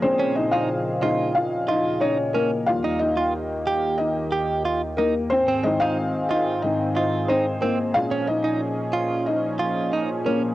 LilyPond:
<<
  \new Staff \with { instrumentName = "Clean electric guitar" } { \time 4/4 \key bes \dorian \tempo 4 = 91 r16 des'16 r16 ees'16 r8 f'8 r8 f'8 ees'16 r16 des'16 r16 | r16 ees'16 r16 f'16 r8 g'8 r8 g'8 f'16 r16 ees'16 r16 | r16 c'16 r16 ees'16 r8 f'8 r8 f'8 ees'16 r16 c'16 r16 | r16 des'16 r16 ees'16 r8 f'8 r8 f'8 ees'16 r16 des'16 r16 | }
  \new Staff \with { instrumentName = "Felt piano" } { \time 4/4 \key bes \dorian <c' c''>8 <ees' ees''>16 <f' f''>8. <ees' ees''>8 <f' f''>8 <ees' ees''>8 <des' des''>8 <bes bes'>8 | <f' f''>8 <ees' ees''>4. <ees' ees''>4. <bes bes'>8 | <c' c''>8 <ees' ees''>16 <f' f''>8. <ees' ees''>8 <ees' ees''>8 <ees' ees''>8 <c' c''>8 <bes bes'>8 | <f' f''>8 <ees' ees''>4. <ees' ees''>4. <bes bes'>8 | }
  \new Staff \with { instrumentName = "Felt piano" } { \clef bass \time 4/4 \key bes \dorian <bes, aes des'>4. <bes, aes des'>8 r2 | <ees g bes>1 | r8 <aes, ees c'>4. <aes, ees c'>8 r4. | <bes, aes des'>4. r2 r8 | }
  \new Staff \with { instrumentName = "Analog synth pad" } { \clef bass \time 4/4 \key bes \dorian << { aes'1 | g'1 | aes'1~ | aes'1 | } \\ { <bes, des f>1 | <ees, ees bes>1 | <aes, ees c'>1 | <bes, f des'>1 | } >> }
>>